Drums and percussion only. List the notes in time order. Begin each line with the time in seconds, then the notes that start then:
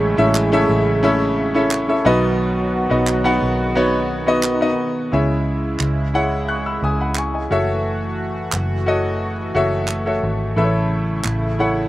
0.35 clap
1.71 clap
3.07 clap
4.43 clap
5.80 clap
7.15 clap
8.52 clap
9.88 clap
11.24 clap